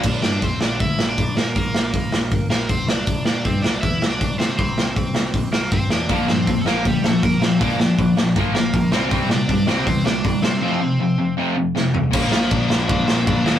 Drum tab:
CC |x-------|--------|--------|--------|
HH |--o-o-o-|o-o-o-o-|o-o-o-o-|o-o-o-o-|
SD |-o-o-o-o|-o-o-o-o|-o-o-o-o|-o-o-o-o|
FT |--------|--------|--------|--------|
BD |o-o-o-o-|o-o-o-o-|o-o-o-o-|o-o-o-o-|

CC |--------|--------|--------|--------|
HH |o-o-o-o-|o-o-o-o-|o-o-o-o-|--------|
SD |-o-o-o-o|-o-o-o-o|-o-o-o-o|------o-|
FT |--------|--------|--------|-------o|
BD |o-o-o-o-|o-o-o-o-|o-o-o-o-|--------|

CC |x-x-x-x-|
HH |--------|
SD |-o-o-o-o|
FT |--------|
BD |o-o-o-o-|